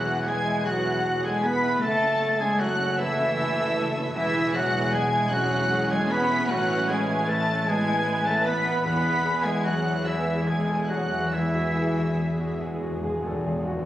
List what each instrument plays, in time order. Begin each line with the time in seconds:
Already playing: double bass section E1, timpani E2, grand piano E2 E4 G#4, harp E2 B3 E4 B4, cello section F#3, french horn section F#3, viola section B3 G#4, oboe F#4, flute section F#5, violin section F#5 F#6
0.08 grand piano E4
0.26 cello section G#3, french horn section G#3, grand piano G#4, oboe G#4, flute section G#5, violin section G#5 G#6
0.46 grand piano E4
0.65 cello section F#3, french horn section F#3, harp E4, oboe F#4, grand piano G#4, flute section F#5, violin section F#5 F#6
0.85 grand piano E4
1.04 harp B2, grand piano G#4
1.23 cello section G#3, french horn section G#3, oboe G#4, grand piano A4, flute section G#5, violin section G#5 G#6
1.43 cello section B3, harp B3, french horn section B3, grand piano G#4, oboe B4, flute section B5, violin section B5 B6
1.62 grand piano E4
1.80 double bass section F#1, grand piano F#2, harp F#2, cello section A3, viola section A3 A4, french horn section A3, oboe A4, flute section A5, violin section A5 A6
2.00 grand piano C#4
2.20 harp A3, grand piano A4
2.39 cello section G#3, french horn section G#3, grand piano C#4, oboe G#4, flute section G#5, violin section G#5 G#6
2.58 cello section F#3, french horn section F#3, oboe F#4, grand piano A4, harp A4, flute section F#5, violin section F#5 F#6
2.77 grand piano C#4
2.97 cello section E3, french horn section E3, harp C#4, oboe E4, grand piano A4, violin section E5 E6, flute section E5
3.17 grand piano C#4
3.37 harp C#3, grand piano A4
3.57 grand piano B4
3.76 harp A3, grand piano A4
3.96 grand piano C#4
4.14 double bass section E1, harp E2, grand piano E2, cello section E3, french horn section E3, viola section B3 G#4, oboe E4, violin section E5 E6, flute section E5
4.35 grand piano E4
4.52 cello section F#3, french horn section F#3, harp B3, oboe F#4, grand piano G#4, violin section F#5 F#6, flute section F#5
4.73 grand piano E4
4.92 cello section G#3, french horn section G#3, harp G#4, grand piano G#4, oboe G#4, violin section G#5 G#6, flute section G#5
5.12 grand piano E4
5.30 cello section F#3, french horn section F#3, viola section C#4, harp E4, oboe F#4, grand piano G#4, violin section F#5 F#6, flute section F#5
5.51 grand piano E4
5.71 harp B2, grand piano G#4
5.90 cello section G#3, french horn section G#3, oboe G#4, grand piano A4, flute section G#5, violin section G#5 G#6
6.09 cello section B3, harp B3, french horn section B3, grand piano G#4, oboe B4, flute section B5, violin section B5 B6
6.30 grand piano E4
6.48 double bass section A1, harp A2, grand piano A2, french horn section F#3, cello section F#3, oboe F#4, viola section B4, violin section F#5 F#6, flute section F#5
6.68 grand piano E4
6.88 french horn section G#3, cello section G#3, oboe G#4, grand piano B4, flute section G#5, violin section G#5 G#6
7.08 grand piano E4
7.27 french horn section A3, cello section A3, oboe A4, grand piano B4, harp B4, flute section A5, violin section A5 A6
7.48 grand piano E4
7.66 french horn section G#3, cello section G#3, viola section B3 B4, harp E4, oboe G#4, grand piano B4, flute section G#5, violin section G#5 G#6
7.88 grand piano E4
8.07 harp E3, grand piano B4
8.25 cello section A3, french horn section A3, oboe A4, grand piano C#5, violin section A5 A6, flute section A5
8.45 french horn section B3, cello section B3, harp C#4, oboe B4, grand piano B4, violin section B5 B6, flute section B5
8.67 grand piano E4
8.84 double bass section E2, timpani E2, harp E2, grand piano E2, viola section B3 G#4, cello section B3, french horn section B3, oboe B4, violin section B5 B6, flute section B5
9.06 grand piano E4
9.24 harp B3, grand piano G#4
9.42 cello section G#3, french horn section G#3, grand piano E4, oboe G#4, violin section G#5 G#6, flute section G#5
9.63 cello section F#3, french horn section F#3, oboe F#4, grand piano G#4, violin section F#5 F#6, flute section F#5
9.86 grand piano E4
10.04 cello section E3, french horn section E3, viola section G#3, harp E4, oboe E4, grand piano G#4, violin section E5 E6, flute section E5
10.27 grand piano E4
10.46 harp B2, cello section G#3, french horn section G#3, oboe G#4, grand piano G#4, violin section G#5 G#6, flute section G#5
10.69 grand piano A4
10.87 cello section F#3, french horn section F#3, harp B3, oboe F#4, grand piano G#4, violin section F#5 F#6, flute section F#5
11.12 grand piano E4
11.31 harp E2, grand piano E2, timpani E2, cello section E3, french horn section E3, viola section G#3 G#4, oboe E4, flute section E5, violin section E5 E6
11.41 timpani E2
11.49 timpani E2
11.54 timpani E2, grand piano F#4
11.66 timpani E2
11.73 timpani E2, harp B3, grand piano G#4
11.81 timpani E2
11.89 timpani E2
11.96 timpani E2, grand piano F#4
12.05 timpani E2
12.13 timpani E2
12.19 timpani E2, grand piano G#4
12.28 timpani E2
12.35 timpani E2
12.40 timpani E2, grand piano F#4
12.51 timpani E2
12.59 timpani E2, harp F#4, grand piano G#4
12.68 timpani E2
12.75 timpani E2
12.83 timpani E2, grand piano F#4
12.92 timpani E2
13.00 timpani E2, harp B2, grand piano G#4
13.07 timpani E2
13.15 timpani E2
13.23 timpani E2, grand piano A4
13.32 timpani E2
13.39 timpani E2
13.46 timpani E2, harp B3, grand piano G#4
13.55 timpani E2
13.62 timpani E2
13.67 timpani E2, grand piano F#4
13.79 timpani E2